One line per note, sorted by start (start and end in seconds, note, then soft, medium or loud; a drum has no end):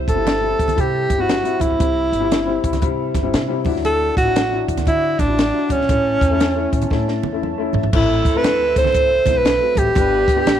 0.00 7.89 E4 medium
0.00 3.62 C5 medium
0.00 3.62 E5 medium
0.08 0.52 G1 medium
0.08 0.81 A4 loud
0.08 kick medium
0.08 closed hi-hat medium
0.15 0.32 G3 medium
0.15 0.32 C4 medium
0.15 0.33 E4 medium
0.27 snare loud
0.27 closed hi-hat medium
0.27 high conga medium
0.41 0.68 G3 medium
0.41 0.69 C4 medium
0.41 0.69 E4 medium
0.59 0.76 C2 medium
0.59 kick medium
0.59 closed hi-hat medium
0.68 closed hi-hat medium
0.68 low conga medium
0.76 1.06 C3 loud
0.76 1.10 G3 medium
0.76 1.10 C4 medium
0.76 1.11 G4 medium
0.76 1.22 G4 medium
0.76 kick medium
0.76 closed hi-hat medium
1.10 1.40 G1 medium
1.10 kick medium
1.10 closed hi-hat medium
1.10 muted conga soft
1.18 1.34 G3 medium
1.18 1.35 C4 medium
1.18 1.35 E4 medium
1.18 1.63 F#4 medium
1.29 snare loud
1.29 closed hi-hat medium
1.29 high conga medium
1.44 1.71 G3 medium
1.44 1.71 C4 medium
1.44 1.72 E4 medium
1.44 closed hi-hat medium
1.60 1.69 B1 medium
1.60 3.15 E4 medium
1.60 kick medium
1.60 closed hi-hat medium
1.60 high conga medium
1.70 1.79 C#2 medium
1.79 2.08 C2 loud
1.79 2.12 G3 medium
1.79 2.13 C4 medium
1.79 2.13 E4 medium
1.79 kick loud
1.79 closed hi-hat medium
1.79 muted conga soft
2.12 2.56 G1 medium
2.12 closed hi-hat medium
2.20 2.37 G3 medium
2.20 2.37 C4 medium
2.20 2.38 E4 medium
2.32 snare loud
2.32 closed hi-hat medium
2.32 high conga medium
2.46 2.73 G3 medium
2.46 2.73 C4 medium
2.46 2.74 E4 medium
2.64 2.80 C2 medium
2.64 kick medium
2.64 closed hi-hat medium
2.73 snare soft
2.73 closed hi-hat medium
2.73 low conga medium
2.82 3.10 C3 medium
2.82 3.15 G3 medium
2.82 3.15 C4 medium
2.82 3.16 E4 medium
2.82 kick medium
2.82 closed hi-hat medium
2.82 muted conga soft
3.14 3.35 G1 medium
3.14 kick medium
3.14 snare soft
3.14 closed hi-hat medium
3.14 muted conga soft
3.14 low conga medium
3.23 3.39 G3 medium
3.23 3.40 C4 medium
3.23 3.40 E4 medium
3.34 3.67 C3 medium
3.34 snare loud
3.34 closed hi-hat medium
3.34 high conga medium
3.48 3.65 G3 medium
3.48 3.66 C4 medium
3.48 3.65 E4 medium
3.64 4.10 D2 medium
3.64 3.70 E3 medium
3.64 4.17 D4 medium
3.64 4.17 E4 medium
3.64 5.87 D5 medium
3.64 5.87 F#5 medium
3.64 kick loud
3.64 open hi-hat soft
3.64 high conga medium
3.71 4.19 F#3 medium
3.76 snare soft
3.85 4.15 A4 loud
3.85 closed hi-hat medium
3.85 muted conga soft
4.17 4.61 A1 medium
4.17 4.65 F#4 medium
4.17 kick medium
4.17 closed hi-hat medium
4.25 4.41 F#3 medium
4.25 4.42 D4 medium
4.25 4.42 E4 medium
4.36 snare loud
4.36 closed hi-hat medium
4.36 high conga medium
4.51 4.78 F#3 medium
4.51 4.78 D4 medium
4.51 4.79 E4 medium
4.68 4.85 D2 medium
4.68 kick medium
4.68 closed hi-hat medium
4.77 snare soft
4.77 closed hi-hat medium
4.77 low conga medium
4.86 5.15 D3 loud
4.86 5.19 F#3 medium
4.86 5.20 D4 medium
4.86 5.21 E4 loud
4.86 5.20 E4 medium
4.86 kick medium
4.86 closed hi-hat medium
4.86 muted conga soft
5.19 5.49 A1 loud
5.19 5.73 D4 loud
5.19 kick medium
5.19 snare soft
5.19 closed hi-hat medium
5.19 muted conga soft
5.28 5.44 F#3 medium
5.28 5.44 D4 medium
5.28 5.45 E4 medium
5.39 snare loud
5.39 closed hi-hat medium
5.39 high conga medium
5.53 5.80 F#3 medium
5.53 5.80 D4 medium
5.53 5.81 E4 medium
5.69 5.78 D2 medium
5.69 7.24 C#4 medium
5.69 kick medium
5.69 closed hi-hat medium
5.69 high conga medium
5.80 5.88 A#1 medium
5.80 snare soft
5.88 6.17 A1 loud
5.88 6.21 A3 medium
5.88 6.22 C#4 medium
5.88 6.22 E4 medium
5.88 7.91 C#5 medium
5.88 7.91 A5 medium
5.88 kick loud
5.88 closed hi-hat medium
5.88 muted conga soft
6.21 6.65 E2 medium
6.21 kick loud
6.21 closed hi-hat medium
6.30 6.46 A3 medium
6.30 6.46 C#4 medium
6.30 6.47 E4 medium
6.40 snare loud
6.40 closed hi-hat medium
6.40 high conga medium
6.55 6.82 A3 medium
6.55 6.82 C#4 medium
6.55 6.82 E4 medium
6.73 6.89 A2 medium
6.73 kick medium
6.73 closed hi-hat medium
6.81 closed hi-hat medium
6.81 low conga medium
6.90 7.19 A2 medium
6.90 7.23 A3 medium
6.90 7.24 C#4 medium
6.90 7.24 E4 medium
6.90 kick medium
6.90 snare medium
6.90 muted conga soft
7.08 snare soft
7.23 7.53 E2 medium
7.23 muted conga soft
7.23 low conga medium
7.32 7.48 A3 medium
7.32 7.48 C#4 medium
7.32 7.49 E4 medium
7.43 7.90 E5 medium
7.43 high conga medium
7.58 7.84 A3 medium
7.58 7.84 C#4 medium
7.58 7.85 E4 medium
7.73 7.82 G2 medium
7.73 floor tom loud
7.73 high conga medium
7.83 7.91 A#1 medium
7.83 floor tom medium
7.83 high conga soft
7.92 8.20 A1 loud
7.92 9.73 E3 medium
7.92 8.25 A3 medium
7.92 9.73 C4 medium
7.92 8.26 C4 medium
7.92 8.26 E4 medium
7.92 8.39 E4 medium
7.92 9.73 A4 medium
7.92 9.94 A4 medium
7.92 9.94 E5 medium
7.92 kick loud
7.92 crash medium
7.92 muted conga soft
8.25 8.41 E2 medium
8.25 kick medium
8.25 closed hi-hat medium
8.34 8.60 A3 medium
8.34 8.61 C4 medium
8.34 8.61 E4 medium
8.34 8.77 B4 loud
8.43 8.71 D2 medium
8.43 snare loud
8.43 closed hi-hat medium
8.43 high conga medium
8.75 9.20 C2 medium
8.75 9.06 A3 medium
8.75 9.06 C4 medium
8.75 9.07 E4 medium
8.75 9.39 C5 loud
8.75 kick medium
8.75 closed hi-hat medium
8.84 snare soft
8.84 low conga medium
8.92 kick medium
8.92 closed hi-hat medium
8.92 muted conga soft
9.26 9.56 B1 medium
9.26 9.46 A3 medium
9.26 9.46 C4 medium
9.26 9.47 E4 medium
9.26 kick medium
9.26 snare soft
9.26 closed hi-hat medium
9.26 muted conga soft
9.26 low conga medium
9.38 9.80 B4 loud
9.45 snare loud
9.45 closed hi-hat medium
9.45 high conga medium
9.60 9.86 A3 medium
9.60 9.87 C4 medium
9.60 9.87 F#4 medium
9.75 9.85 A1 medium
9.75 10.60 G4 loud
9.75 kick medium
9.75 closed hi-hat medium
9.75 high conga medium
9.87 9.95 G#1 medium
9.95 10.23 G1 loud
9.95 10.45 G3 medium
9.95 10.28 B3 medium
9.95 10.45 D4 medium
9.95 10.28 D4 medium
9.95 10.29 G4 medium
9.95 10.60 G4 medium
9.95 10.45 B4 medium
9.95 10.60 D5 medium
9.95 10.60 B5 medium
9.95 kick loud
9.95 closed hi-hat medium
9.95 muted conga soft
10.28 10.44 D2 medium
10.28 kick loud
10.28 closed hi-hat medium
10.36 10.60 B3 medium
10.36 10.60 D4 medium
10.36 10.60 G4 loud
10.46 10.60 A1 medium
10.46 snare loud
10.46 closed hi-hat medium
10.46 high conga medium